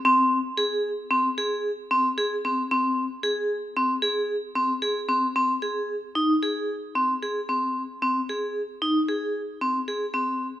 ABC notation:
X:1
M:5/4
L:1/8
Q:1/4=113
K:Ab
V:1 name="Vibraphone"
C2 A2 C A2 C A C | C2 A2 C A2 C A C | C A2 E A2 C A C2 | C A2 E A2 C A C2 |]